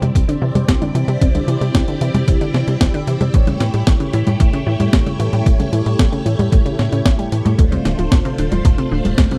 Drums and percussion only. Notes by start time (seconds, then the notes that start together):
0.02 closed hi-hat, high conga
0.15 kick, closed hi-hat
0.29 closed hi-hat
0.55 closed hi-hat, high conga
0.68 kick, snare, closed hi-hat
0.82 closed hi-hat, high conga
0.95 closed hi-hat
1.08 closed hi-hat
1.22 kick, closed hi-hat
1.35 closed hi-hat, high conga
1.48 closed hi-hat
1.61 closed hi-hat
1.75 kick, snare, closed hi-hat
1.88 closed hi-hat
2.01 closed hi-hat
2.15 closed hi-hat, high conga
2.28 kick, closed hi-hat
2.41 closed hi-hat
2.54 snare
2.68 closed hi-hat
2.81 kick, snare, closed hi-hat
2.94 closed hi-hat
3.07 closed hi-hat
3.21 closed hi-hat, high conga
3.34 kick, closed hi-hat
3.47 closed hi-hat, high conga
3.60 snare, closed hi-hat
3.74 closed hi-hat
3.87 kick, snare, closed hi-hat
4.00 closed hi-hat
4.13 closed hi-hat
4.27 closed hi-hat, high conga
4.40 kick, closed hi-hat
4.53 closed hi-hat
4.80 closed hi-hat, high conga
4.93 kick, snare, closed hi-hat
5.06 closed hi-hat, high conga
5.20 closed hi-hat
5.33 closed hi-hat
5.46 kick, closed hi-hat
5.60 closed hi-hat, high conga
5.73 closed hi-hat
5.86 closed hi-hat
5.99 kick, snare, closed hi-hat
6.13 closed hi-hat
6.26 closed hi-hat
6.39 closed hi-hat, high conga
6.52 kick, closed hi-hat
6.66 closed hi-hat
6.79 snare
6.92 closed hi-hat
7.05 kick, snare, closed hi-hat
7.19 closed hi-hat
7.32 closed hi-hat
7.46 closed hi-hat, high conga
7.59 kick, closed hi-hat
7.72 closed hi-hat, high conga
7.85 snare, closed hi-hat
7.99 closed hi-hat
8.12 kick, snare, closed hi-hat
8.25 closed hi-hat
8.38 closed hi-hat
8.52 closed hi-hat, high conga
8.65 kick, closed hi-hat
8.78 closed hi-hat
9.05 closed hi-hat, high conga
9.18 kick, snare, closed hi-hat
9.31 closed hi-hat, high conga